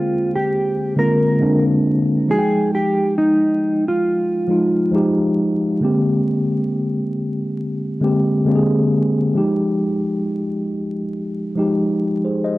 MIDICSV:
0, 0, Header, 1, 3, 480
1, 0, Start_track
1, 0, Tempo, 882353
1, 1246, Time_signature, 4, 2, 24, 8
1, 6844, End_track
2, 0, Start_track
2, 0, Title_t, "Clean electric guitar"
2, 0, Program_c, 0, 27
2, 0, Note_on_c, 0, 65, 76
2, 171, Note_off_c, 0, 65, 0
2, 193, Note_on_c, 0, 67, 72
2, 508, Note_off_c, 0, 67, 0
2, 537, Note_on_c, 0, 70, 74
2, 892, Note_off_c, 0, 70, 0
2, 1255, Note_on_c, 0, 68, 101
2, 1469, Note_off_c, 0, 68, 0
2, 1495, Note_on_c, 0, 67, 76
2, 1709, Note_off_c, 0, 67, 0
2, 1730, Note_on_c, 0, 63, 76
2, 2088, Note_off_c, 0, 63, 0
2, 2112, Note_on_c, 0, 65, 74
2, 3146, Note_off_c, 0, 65, 0
2, 6844, End_track
3, 0, Start_track
3, 0, Title_t, "Tine electric piano"
3, 0, Program_c, 1, 4
3, 0, Control_c, 1, 64, 127
3, 0, Note_on_c, 1, 50, 72
3, 0, Note_on_c, 1, 56, 77
3, 0, Note_on_c, 1, 58, 64
3, 0, Note_on_c, 1, 60, 69
3, 0, Note_on_c, 1, 68, 56
3, 0, Note_on_c, 1, 72, 63
3, 0, Note_on_c, 1, 79, 81
3, 57, Note_off_c, 1, 79, 0
3, 523, Note_off_c, 1, 50, 0
3, 523, Note_on_c, 1, 50, 78
3, 527, Note_off_c, 1, 56, 0
3, 527, Note_on_c, 1, 56, 70
3, 534, Note_off_c, 1, 58, 0
3, 534, Note_on_c, 1, 58, 72
3, 540, Note_off_c, 1, 60, 0
3, 540, Note_on_c, 1, 60, 69
3, 543, Note_on_c, 1, 65, 77
3, 716, Note_off_c, 1, 50, 0
3, 718, Note_off_c, 1, 56, 0
3, 721, Note_off_c, 1, 58, 0
3, 724, Note_off_c, 1, 60, 0
3, 726, Note_off_c, 1, 65, 0
3, 757, Note_on_c, 1, 50, 82
3, 763, Note_on_c, 1, 56, 70
3, 766, Note_on_c, 1, 58, 70
3, 773, Note_on_c, 1, 60, 75
3, 777, Note_on_c, 1, 62, 97
3, 1144, Note_off_c, 1, 50, 0
3, 1148, Note_off_c, 1, 56, 0
3, 1149, Note_off_c, 1, 58, 0
3, 1153, Note_off_c, 1, 60, 0
3, 1155, Note_off_c, 1, 62, 0
3, 1242, Note_on_c, 1, 53, 74
3, 1249, Note_on_c, 1, 56, 70
3, 1254, Control_c, 1, 64, 0
3, 1256, Note_on_c, 1, 63, 65
3, 1258, Note_off_c, 1, 72, 0
3, 1259, Note_off_c, 1, 68, 0
3, 1263, Note_on_c, 1, 66, 64
3, 1296, Note_off_c, 1, 66, 0
3, 1298, Note_on_c, 1, 79, 89
3, 1340, Control_c, 1, 64, 127
3, 1968, Note_off_c, 1, 53, 0
3, 1972, Note_off_c, 1, 56, 0
3, 1975, Note_off_c, 1, 63, 0
3, 1996, Note_off_c, 1, 79, 0
3, 2434, Note_on_c, 1, 53, 74
3, 2441, Note_on_c, 1, 56, 68
3, 2449, Note_on_c, 1, 63, 70
3, 2453, Note_on_c, 1, 65, 83
3, 2631, Note_off_c, 1, 53, 0
3, 2635, Note_off_c, 1, 56, 0
3, 2639, Note_off_c, 1, 63, 0
3, 2641, Note_off_c, 1, 65, 0
3, 2674, Note_on_c, 1, 53, 85
3, 2682, Note_on_c, 1, 56, 76
3, 2687, Note_on_c, 1, 63, 78
3, 2696, Note_on_c, 1, 67, 90
3, 3063, Note_off_c, 1, 53, 0
3, 3067, Note_off_c, 1, 56, 0
3, 3070, Note_off_c, 1, 63, 0
3, 3074, Note_off_c, 1, 67, 0
3, 3159, Note_on_c, 1, 50, 77
3, 3164, Note_on_c, 1, 56, 66
3, 3170, Note_on_c, 1, 58, 75
3, 3173, Control_c, 1, 64, 0
3, 3174, Note_on_c, 1, 60, 69
3, 3180, Note_on_c, 1, 67, 77
3, 3272, Control_c, 1, 64, 127
3, 3886, Note_off_c, 1, 50, 0
3, 3889, Note_off_c, 1, 56, 0
3, 3892, Note_off_c, 1, 58, 0
3, 3894, Note_off_c, 1, 60, 0
3, 3897, Note_off_c, 1, 67, 0
3, 4354, Note_on_c, 1, 50, 72
3, 4359, Note_on_c, 1, 56, 76
3, 4365, Note_on_c, 1, 58, 64
3, 4370, Note_on_c, 1, 60, 69
3, 4375, Note_on_c, 1, 67, 84
3, 4551, Note_off_c, 1, 50, 0
3, 4554, Note_off_c, 1, 56, 0
3, 4557, Note_off_c, 1, 58, 0
3, 4559, Note_off_c, 1, 60, 0
3, 4562, Note_off_c, 1, 67, 0
3, 4596, Note_on_c, 1, 50, 82
3, 4601, Note_on_c, 1, 56, 78
3, 4608, Note_on_c, 1, 58, 77
3, 4613, Note_on_c, 1, 60, 74
3, 4616, Note_on_c, 1, 67, 65
3, 4653, Note_off_c, 1, 67, 0
3, 4654, Note_on_c, 1, 68, 92
3, 4984, Note_off_c, 1, 50, 0
3, 4987, Note_off_c, 1, 56, 0
3, 4990, Note_off_c, 1, 58, 0
3, 4993, Note_off_c, 1, 60, 0
3, 5013, Note_off_c, 1, 68, 0
3, 5080, Note_on_c, 1, 53, 79
3, 5086, Note_on_c, 1, 56, 66
3, 5093, Control_c, 1, 64, 0
3, 5095, Note_on_c, 1, 63, 70
3, 5099, Note_on_c, 1, 67, 81
3, 5200, Control_c, 1, 64, 127
3, 5807, Note_off_c, 1, 53, 0
3, 5810, Note_off_c, 1, 56, 0
3, 5814, Note_off_c, 1, 63, 0
3, 5817, Note_off_c, 1, 67, 0
3, 6286, Note_on_c, 1, 53, 73
3, 6293, Note_on_c, 1, 56, 69
3, 6299, Note_on_c, 1, 63, 69
3, 6305, Note_on_c, 1, 67, 80
3, 6477, Note_off_c, 1, 53, 0
3, 6481, Note_off_c, 1, 56, 0
3, 6484, Note_off_c, 1, 63, 0
3, 6487, Note_off_c, 1, 67, 0
3, 6662, Note_on_c, 1, 72, 54
3, 6666, Note_on_c, 1, 68, 53
3, 6758, Note_off_c, 1, 72, 0
3, 6760, Note_off_c, 1, 68, 0
3, 6769, Note_on_c, 1, 75, 74
3, 6771, Note_on_c, 1, 72, 59
3, 6844, Note_off_c, 1, 72, 0
3, 6844, Note_off_c, 1, 75, 0
3, 6844, End_track
0, 0, End_of_file